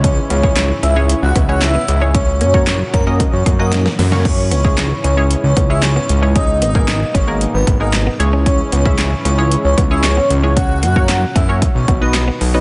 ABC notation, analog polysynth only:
X:1
M:4/4
L:1/16
Q:1/4=114
K:C#dor
V:1 name="Analog polysynth"
[G,CEGc]2 z [G,CEGc]2 z2 [G,CEGc]2 z2 [G,CEGc]2 z2 [G,CEGc] | z3 [A,CFAc]2 z2 [A,CFAd]2 z2 [A,CFAd]2 z2 [A,CFAc] | z3 [G,CEGc]2 z2 [G,CEGc]2 z2 [G,CEGc]2 z2 [G,CEGc] | z3 [A,B,DGA]2 z2 [A,B,DGA]2 z2 [A,B,DGA]2 z [G,CEGc]2- |
[G,CEGc]2 z [G,CEGe]2 z2 [G,CEGc]2 z2 [G,CEGc]2 z2 [G,CEGc] | z3 [A,CFAc]2 z2 [A,CFAc] z3 [B,DFBd]2 z2 [B,DFBd] |]